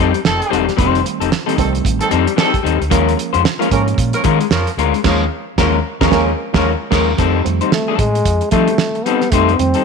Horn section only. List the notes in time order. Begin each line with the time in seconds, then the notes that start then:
0.24 D#3 C4 A4
1.58 D#3 C4 A4
2.01 D#3 C4 A4
2.38 D#3 C4 A4
3.71 F3 C#4 A#4
4.14 F3 C#4 A#4
4.52 F3 C#4 A#4
5.05 F3 C#4 A#4
5.59 F3 C#4 A#4
6.01 F3 C#4 A#4
6.12 F3 C#4 A#4
6.55 F3 C#4 A#4
6.92 F3 C#4 A#4